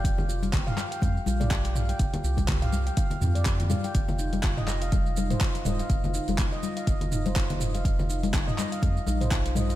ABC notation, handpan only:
X:1
M:4/4
L:1/16
Q:"Swing 16ths" 1/4=123
K:Gphr
V:1 name="Handpan"
z G F z G f z g f z F d G z f g | z G F z G f z g f z F d G z f g | z F E z F e z f e z E c F z e f | z F E z F e z f e z E c F z e f |
z F E z F e z f e z E c F z e f |]